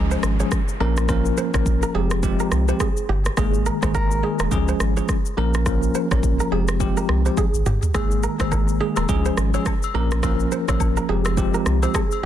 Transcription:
Already playing: sub bass C#2, tine electric piano F3 G#3 C#4 G#4, downlifter
0.11 kora C5, shaker
0.23 sub bass G#1, cross-stick, shaker
0.40 tine electric piano F3 G#3 C#4 G#4, kora C#5, shaker
0.52 kick, cross-stick, shaker
0.68 shaker
0.80 sub bass A#1, tine electric piano F3 A#3 C#4 A#4, kora A#4
0.97 cross-stick, shaker
1.09 tine electric piano F3 A#3 C#4 A#4, kick, cross-stick, shaker
1.25 shaker
1.37 kora C5, shaker
1.54 sub bass A#1, tine electric piano F3 A#3 C#4 A#4, kora C#5, kick, cross-stick, shaker
1.66 kick, shaker
1.83 kora A#4, shaker
1.94 sub bass F1, tine electric piano F3 G#3 C4 G4, kora G#4
2.11 cross-stick, shaker
2.23 tine electric piano F3 G#3 C4 G4, kick, shaker
2.40 kora A#4, shaker
2.52 sub bass C2, cross-stick, shaker
2.68 tine electric piano F3 G#3 C4 G4, kora C5, shaker
2.80 kora G#4, kick, cross-stick, shaker
2.97 shaker
3.09 sub bass G1, kora G4
3.25 cross-stick, shaker
3.37 sub bass G#1, tine electric piano D#3 G#3 A#3 G#4, kora G#4, kick, cross-stick, shaker
3.54 shaker
3.66 kora A#4, shaker
3.82 sub bass G#1, tine electric piano D#3 G#3 A#3 G#4, kora C5, kick, cross-stick, shaker
3.95 kora A#4, kick, shaker
4.11 shaker
4.23 tine electric piano D#3 G#3 A#3 G#4, kora G#4
4.39 sub bass D#1, kora A#4, cross-stick, shaker
4.51 sub bass C#2, tine electric piano F3 G#3 C#4 G#4, kick, shaker
4.68 kora C5, shaker
4.80 sub bass G#1, cross-stick, shaker
4.97 tine electric piano F3 G#3 C#4 G#4, kora C#5, shaker
5.09 kick, cross-stick, shaker
5.26 shaker
5.37 sub bass A#1, tine electric piano F3 A#3 C#4 A#4, kora A#4
5.54 cross-stick, shaker
5.66 tine electric piano F3 A#3 C#4 A#4, kick, cross-stick, shaker
5.83 shaker
5.95 kora C5, shaker
6.11 sub bass A#1, tine electric piano F3 A#3 C#4 A#4, kora C#5, kick, cross-stick, shaker
6.23 kick, shaker
6.40 kora A#4, shaker
6.51 sub bass F1, tine electric piano F3 G#3 C4 G4, kora G#4
6.68 cross-stick, shaker
6.80 tine electric piano F3 G#3 C4 G4, kick, shaker
6.97 kora A#4, shaker
7.09 sub bass C2, cross-stick
7.25 tine electric piano F3 G#3 C4 G4, kora C5, shaker
7.37 kora G#4, kick, high tom, shaker
7.54 sub bass G#1, shaker
7.66 sub bass G1, kora G4, mid tom, shaker
7.83 floor tom, shaker
7.94 sub bass G#1, tine electric piano D#3 G#3 A#3 G#4, kora G#4, kick, cross-stick, high agogo, shaker
8.11 shaker
8.23 kora A#4, shaker
8.39 sub bass G#1, tine electric piano D#3 G#3 A#3 G#4, kora C5, kick, cross-stick, high agogo, shaker
8.51 kora A#4, kick, low woodblock, shaker
8.68 shaker
8.80 tine electric piano D#3 G#3 A#3 G#4, kora G#4
8.96 sub bass D#1, kora A#4, cross-stick, high agogo, shaker
9.09 sub bass C#2, tine electric piano F3 G#3 C#4 G#4, kick, shaker
9.25 kora C5, shaker
9.37 sub bass G#1, cross-stick, shaker
9.54 tine electric piano F3 G#3 C#4 G#4, kora C#5, high agogo, shaker
9.66 kick, cross-stick, low woodblock, shaker
9.83 high agogo, shaker
9.94 sub bass A#1, tine electric piano F3 A#3 C#4 A#4, kora A#4
10.11 cross-stick, shaker
10.23 tine electric piano F3 A#3 C#4 A#4, kick, cross-stick, high agogo, shaker
10.40 shaker
10.52 kora C5, shaker
10.68 sub bass A#1, tine electric piano F3 A#3 C#4 A#4, kora C#5, kick, cross-stick, high agogo, shaker
10.80 kick, low woodblock, shaker
10.97 kora A#4, shaker
11.09 sub bass F1, tine electric piano F3 G#3 C4 G4, kora G#4
11.25 cross-stick, high agogo, shaker
11.37 tine electric piano F3 G#3 C4 G4, kick, shaker
11.54 kora A#4, shaker
11.66 sub bass C2, cross-stick, shaker
11.82 tine electric piano F3 G#3 C4 G4, kora C5, high agogo, shaker
11.94 kora G#4, kick, cross-stick, low woodblock, shaker
12.11 high agogo, shaker

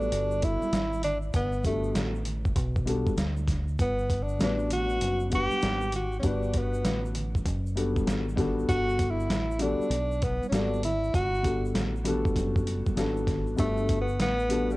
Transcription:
Already playing: grand piano G3 B3 D4 F#4 A4, tenor saxophone D4
0.02 high conga, shaker
0.12 fingered electric bass G1, closed hi-hat, shaker
0.31 shaker
0.42 tenor saxophone E4, kick, closed hi-hat, shaker
0.61 muted fingered electric bass stroke, high conga, shaker
0.72 fingered electric bass G#1, snare, closed hi-hat, shaker
0.93 high conga, shaker
1.03 tenor saxophone D4, closed hi-hat, low conga, shaker
1.22 shaker
1.33 fingered electric bass G1, tenor saxophone B3, kick, closed hi-hat, shaker
1.52 shaker
1.63 grand piano G3 B3 D4 F#4 A4, tenor saxophone A3, kick, closed hi-hat, shaker
1.84 shaker
1.95 fingered electric bass A1, snare, closed hi-hat, low conga, shaker
2.15 shaker
2.25 closed hi-hat, low conga, shaker
2.45 kick, high conga, shaker
2.56 fingered electric bass B1, kick, closed hi-hat, shaker
2.76 kick, shaker
2.86 grand piano G3 B3 D4 F#4 A4, closed hi-hat, shaker
3.06 muted fingered electric bass stroke, kick, high conga, shaker
3.17 fingered electric bass D2, snare, closed hi-hat, shaker
3.37 high conga, shaker
3.48 kick, snare, closed hi-hat, low conga, shaker
3.68 shaker
3.79 fingered electric bass G1, tenor saxophone B3, kick, closed hi-hat, shaker
3.98 shaker
4.09 kick, closed hi-hat, shaker
4.23 tenor saxophone D4
4.29 shaker
4.39 fingered electric bass A1, grand piano G3 B3 D4 F#4 B4, tenor saxophone D4, snare, closed hi-hat, low conga, shaker
4.59 shaker
4.70 tenor saxophone F#4, closed hi-hat, low conga, shaker
4.89 high conga, shaker
5.01 fingered electric bass F#1, closed hi-hat, shaker
5.20 shaker
5.30 grand piano G3 B3 D4 B4 F#5, kick, closed hi-hat, shaker
5.35 tenor saxophone G4
5.51 muted fingered electric bass stroke, high conga, shaker
5.61 fingered electric bass G#1, snare, closed hi-hat, shaker
5.81 high conga, shaker
5.92 tenor saxophone F#4, closed hi-hat, low conga, shaker
6.12 shaker
6.19 fingered electric bass G1, grand piano G3 B3 D4, tenor saxophone C#4, closed hi-hat, shaker
6.23 tenor saxophone D4, grand piano F#4 B4, kick
6.43 shaker
6.54 kick, closed hi-hat, shaker
6.58 tenor saxophone B3
6.74 shaker
6.85 fingered electric bass A1, snare, closed hi-hat, low conga, shaker
7.05 shaker
7.15 closed hi-hat, low conga, shaker
7.35 kick, high conga, shaker
7.45 fingered electric bass F#1, kick, closed hi-hat, shaker
7.66 shaker
7.76 grand piano G3 B3 D4 F#4 A4, closed hi-hat, shaker
7.96 kick, high conga, shaker
8.06 fingered electric bass G#1, snare, closed hi-hat, shaker
8.29 high conga, shaker
8.36 grand piano G3 B3 D4 F#4 A4, kick, snare, closed hi-hat, low conga, shaker
8.59 shaker
8.68 fingered electric bass G1, tenor saxophone F#4, kick, closed hi-hat, shaker
8.89 shaker
8.99 kick, closed hi-hat, shaker
9.10 tenor saxophone E4
9.20 shaker
9.29 fingered electric bass A1, snare, closed hi-hat, low conga, shaker
9.51 shaker
9.59 grand piano G3 B3 D4 F#4 A4, tenor saxophone D4, closed hi-hat, low conga, shaker
9.79 muted fingered electric bass stroke, high conga, shaker
9.90 fingered electric bass B1, closed hi-hat, shaker
10.12 shaker
10.22 tenor saxophone B3, kick, closed hi-hat, shaker
10.41 muted fingered electric bass stroke, high conga, shaker
10.49 fingered electric bass G#1, grand piano G3 B3 D4, tenor saxophone C#4, snare, closed hi-hat
10.54 tenor saxophone D4, grand piano F#4 A4, shaker
10.74 high conga, shaker
10.83 tenor saxophone E4, closed hi-hat, low conga, shaker
11.04 shaker
11.14 fingered electric bass G1, tenor saxophone F#4, kick, closed hi-hat, shaker
11.34 shaker
11.43 grand piano G3 B3 D4 F#4 A4, kick, closed hi-hat, shaker
11.65 shaker
11.74 fingered electric bass A1, snare, closed hi-hat, low conga, shaker
11.96 shaker
12.04 grand piano G3 B3 D4 F#4 A4, closed hi-hat, low conga, shaker
12.25 kick, high conga, shaker
12.36 fingered electric bass F#1, kick, closed hi-hat, shaker
12.56 kick, shaker
12.67 closed hi-hat, shaker
12.86 muted fingered electric bass stroke, kick, high conga, shaker
12.95 fingered electric bass G#1, grand piano G3 B3 D4 F#4 A4, snare, closed hi-hat, shaker
13.17 high conga, shaker
13.27 kick, snare, closed hi-hat, low conga, shaker
13.47 shaker
13.56 fingered electric bass G1, grand piano G3 B3 D4 F#4 A4, tenor saxophone A3, kick, closed hi-hat, shaker
13.77 shaker
13.88 kick, closed hi-hat, shaker
14.01 tenor saxophone B3
14.08 shaker
14.19 fingered electric bass A1, tenor saxophone B3, snare, closed hi-hat, low conga, shaker
14.39 shaker
14.49 grand piano G3 B3 D4 F#4 A4, closed hi-hat, low conga, shaker
14.71 tenor saxophone G3, high conga, shaker

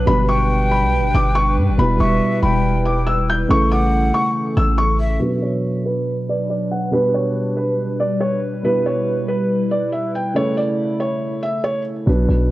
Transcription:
Already playing: ambient pad D4 B4
0.06 808-style bass G1, grand piano B2 G3 D4 B4, ambient pad G3, felt piano B5
0.28 flute G5, felt piano C#6
0.71 felt piano B5
0.83 808-style bass B1
0.98 808-style bass G1
1.14 808-style bass G1, felt piano D6
1.35 felt piano C#6
1.57 808-style bass G2
1.68 808-style bass G1
1.78 808-style bass E1, grand piano B2 G3 E4 B4, felt piano B5
2.00 808-style bass E1, flute E5, felt piano C#6
2.43 808-style bass E1, flute G5, felt piano B5
2.85 felt piano D6
3.07 felt piano E6
3.30 felt piano G6
3.48 808-style bass A1, grand piano C#3 A3 E4 A4, felt piano C#6
3.71 flute F#5, felt piano D6
4.14 felt piano C#6
4.57 808-style bass A1, felt piano E6
4.78 felt piano C#6
5.00 flute E5
5.20 grand piano B2 F#3 D4 B4, ambient pad D4, felt piano B4
5.43 felt piano C#5
5.86 felt piano B4
6.29 felt piano D5
6.50 felt piano D5
6.71 felt piano F#5
6.91 grand piano B2 G3 D4 B4, ambient pad G3 B4, felt piano B4
7.14 felt piano C#5
7.57 felt piano B4
8.00 felt piano D5
8.21 felt piano C#5
8.63 grand piano B2 G3 E4 B4, ambient pad E4, felt piano B4
8.86 felt piano C#5
9.28 felt piano B4
9.71 felt piano D5
9.92 felt piano E5
10.15 felt piano G5
10.34 grand piano C#3 A3 E4 A4, felt piano C#5
10.57 felt piano D5
11.00 felt piano C#5
11.43 felt piano E5
11.64 felt piano C#5
12.06 808-style bass B1, grand piano B2 F#3 D4 B4
12.29 808-style bass B1

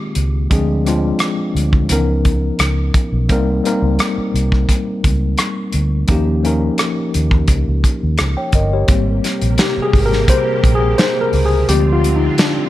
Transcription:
Already playing: tine electric piano D#3 G#3 A#3 C4 F4 G4
0.15 fingered electric bass C#2, closed hi-hat
0.50 fingered electric bass D2, tine electric piano F3 G#3 C4 D4 G#4, kick, closed hi-hat
0.86 tine electric piano F3 G#3 C4 D4 F4, cross-stick, closed hi-hat
1.19 cross-stick, closed hi-hat
1.55 fingered electric bass D2, closed hi-hat
1.73 kick
1.89 fingered electric bass C#2, tine electric piano E3 B3 C#4 D#4 A#4, closed hi-hat
1.96 tine electric piano F3
2.25 kick, closed hi-hat
2.59 fingered electric bass C#2, cross-stick, closed hi-hat
2.94 kick, closed hi-hat
3.12 fingered electric bass B1
3.29 fingered electric bass C2, tine electric piano G3 A#3 C4 D#4 A#4, kick, closed hi-hat
3.64 tine electric piano G3 A#3 C4 D#4 A#4, cross-stick, closed hi-hat
3.82 fingered electric bass C#2
3.99 cross-stick, closed hi-hat
4.18 muted fingered electric bass stroke
4.34 fingered electric bass C2, closed hi-hat
4.52 kick, cross-stick
4.69 kick, closed hi-hat
5.04 fingered electric bass C#2, kick, closed hi-hat
5.38 cross-stick, closed hi-hat
5.73 fingered electric bass D2, closed hi-hat
6.08 fingered electric bass D#2, tine electric piano F3 A#3 C#4 D#4 G4, kick, closed hi-hat
6.43 tine electric piano F3 A#3 C#4 D#4 A#4, closed hi-hat
6.78 cross-stick, closed hi-hat
7.14 fingered electric bass D#2, closed hi-hat
7.31 kick
7.48 fingered electric bass C#2, kick, closed hi-hat
7.68 fingered electric bass C#2
7.84 kick, closed hi-hat
8.03 fingered electric bass D#2
8.18 fingered electric bass C#2, cross-stick, closed hi-hat
8.37 tine electric piano C#5 G5
8.52 fingered electric bass G1, tine electric piano A#4 D#5, kick, closed hi-hat
8.73 tine electric piano G4 C#5
8.88 fingered electric bass G#1, string machine C3 A#3 G4, tine electric piano G3 A#3 C4, kick, closed hi-hat
9.24 snare, closed hi-hat
9.42 fingered electric bass A#1, closed hi-hat
9.58 tine electric piano G4, snare, closed hi-hat
9.77 muted fingered electric bass stroke
9.82 tine electric piano G#4
9.93 fingered electric bass G#1, kick, open hi-hat
10.06 tine electric piano A#4
10.13 snare
10.28 tine electric piano C5, kick, closed hi-hat
10.63 fingered electric bass A#1, kick, closed hi-hat
10.75 tine electric piano G#4
10.98 tine electric piano C5, snare, closed hi-hat
11.21 tine electric piano A#4
11.33 fingered electric bass C#2, open hi-hat
11.45 tine electric piano G#4
11.68 fingered electric bass D2, string machine D3 C4 F4, tine electric piano F3 G#3 C4 G4, closed hi-hat
11.92 tine electric piano F4
12.04 closed hi-hat
12.16 tine electric piano D#4
12.38 tine electric piano D4, snare, closed hi-hat

